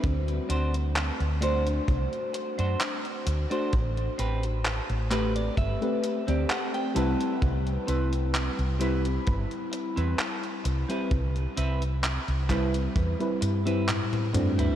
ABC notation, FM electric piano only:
X:1
M:4/4
L:1/16
Q:"Swing 16ths" 1/4=65
K:Clyd
V:1 name="FM electric piano"
[A,CDF]6 [A,DFc]8- [A,DFc] [A,DFc] | z6 [A,CGB]3 [A,CGB]2 [A,CG]3 [G,CEB]2- | [G,CEB]6 [G,CEb]8- [G,CEb] [G,CEB] | z6 [G,CEB]3 [G,CEB]2 [G,CE]3 [A,CDF]2 |]